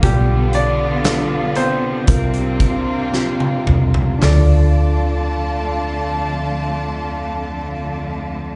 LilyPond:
<<
  \new Staff \with { instrumentName = "Grand piano" } { \time 4/4 \key d \minor \tempo 4 = 55 <g g'>8 <d' d''>4 <c' c''>2 r8 | d''1 | }
  \new Staff \with { instrumentName = "Tine electric piano" } { \time 4/4 \key d \minor <b f' g'>4 <d' f' a'>4 <c' f' bes'>4 <c' f' g'>4 | <d' f' a'>1 | }
  \new Staff \with { instrumentName = "Tine electric piano" } { \clef bass \time 4/4 \key d \minor b,4. r8 c4. r8 | d,1 | }
  \new Staff \with { instrumentName = "String section" } { \time 4/4 \key d \minor <g d' f'>2 <c bes d' f'>2 | <d a f' d'' a''>1 | }
  \new Staff \with { instrumentName = "Cello section" } { \clef bass \time 4/4 \key d \minor <d b>2 <c c'>2 | <f, d a>1 | }
  \new Staff \with { instrumentName = "Fingered electric bass" } { \clef bass \time 4/4 \key d \minor b,,2 c,4 r8 c,8 | d,1 | }
  \new DrumStaff \with { instrumentName = "Drums" } \drummode { \time 4/4 <hh bd>8 hh8 <hh sn>8 hh8 <hh bd>16 hh16 <hh bd>8 sn16 tommh16 toml16 tomfh16 | <hho sn tomfh>4 r4 r4 r4 | }
>>